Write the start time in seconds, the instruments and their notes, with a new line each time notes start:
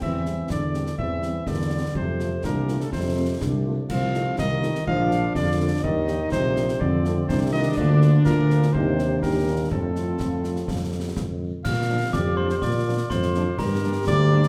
0.01 tuba E2, euphonium E3, trombone section C4, cornet E5, concert bass drum, crash
0.26 french horn section G3 C4 G4, snare
0.50 tuba E2, euphonium D3, trombone section D4, cornet D5, concert bass drum, snare
0.74 french horn section G3 C4 G4, snare
0.86 snare
0.98 tuba E2, euphonium E3, trombone section C4, cornet E5, concert bass drum
1.23 french horn section G3 C4 G4, snare
1.46 tuba E2, euphonium D3, trombone section A#3, cornet D5, concert bass drum, snare
1.72 french horn section G3 C4 G4
1.95 tuba F2, euphonium C3, trombone section A3, cornet C5, concert bass drum
2.20 french horn section A3 C4 F4, snare
2.44 tuba C2, euphonium A#2, trombone section D4, cornet A#4, concert bass drum, snare
2.68 french horn section A3 C4 F4, snare
2.81 euphonium A2, cornet A4, snare
2.92 tuba F2, euphonium C3, trombone section C4, cornet C5, concert bass drum, snare
3.17 french horn section A3 C4 F4
3.40 tuba C2, trombone section D4, concert bass drum, snare
3.65 french horn section A3 C4 F4
3.90 tuba C2, euphonium F3, trombone section C4, cornet F5, concert bass drum, crash
4.13 french horn section A3 D#4 F4, snare
4.38 tuba C2, euphonium D#3, trombone section D#4, cornet D#5, concert bass drum, snare
4.62 french horn section A3 D#4 F4, snare
4.75 snare
4.87 tuba A#1, euphonium F3, trombone section D4, cornet F5, concert bass drum
5.10 french horn section A#3 D4 F4, snare
5.35 tuba F2, euphonium D3, cornet D5, concert bass drum, snare
5.60 french horn section A#3 D4 F4
5.83 tuba D#2, euphonium D#3, trombone section D#4, cornet D#5, concert bass drum
6.08 french horn section A#3 D4 G4, snare
6.32 tuba A#1, euphonium C3, cornet C5, concert bass drum, snare
6.56 french horn section A#3 D4 G4, snare
6.69 snare
6.80 tuba F2, euphonium D3, trombone section C4, cornet D5, concert bass drum
7.04 french horn section A3 C4 F4, snare
7.28 tuba C2, euphonium C3, trombone section D4, cornet C5, concert bass drum, snare
7.52 euphonium D#3, french horn section A3 C4 F4, cornet D#5
7.77 tuba D2, euphonium D3, french horn section A#3 F4, cornet D5, concert bass drum, crash
8.02 snare
8.25 tuba D2, euphonium A#2, french horn section A#3 F4, cornet A#4, concert bass drum, snare
8.50 snare
8.62 snare
8.73 tuba D#2, euphonium C3, french horn section A#3 D#4 G4, cornet C5, concert bass drum
8.99 snare
9.22 tuba D#2, euphonium A#2, french horn section A#3 D#4 G4, cornet A#4, concert bass drum, snare
9.48 french horn section D4
9.71 tuba F2, euphonium A2, french horn section F3 C4 F4, trombone section C4, cornet A4, concert bass drum
9.96 snare
10.20 tuba F2, concert bass drum, snare
10.44 snare
10.56 snare
10.68 tuba F2, concert bass drum, snare
11.17 tuba F2, concert bass drum, snare
11.65 tuba A#2, cornet F5, glockenspiel F6, concert bass drum, snare, crash
11.89 french horn section F3 A#3 D4, trombone section F3 D4
12.13 tuba F2, euphonium G4, cornet D5, glockenspiel D6, concert bass drum, snare
12.37 trombone section F3 D4, french horn section F3 A#3 D4, cornet C5, glockenspiel C6
12.49 cornet C5, glockenspiel C6, snare
12.62 tuba A#2, euphonium F4, cornet D5, glockenspiel D6, concert bass drum, snare
12.86 trombone section F3 D4, french horn section F3 A#3 D4
13.10 tuba F2, cornet C5, glockenspiel C6, concert bass drum, snare
13.22 snare
13.35 trombone section F3 D4, french horn section F3 A#3 D4, snare
13.58 tuba G2, euphonium G4, cornet A#4, glockenspiel A#5, concert bass drum, snare, crash
13.83 trombone section G3 D4, french horn section G3 A#3 D4
14.07 tuba D2, cornet D5, glockenspiel D6, concert bass drum, snare
14.31 trombone section G3 D4, french horn section G3 A#3 D4
14.43 snare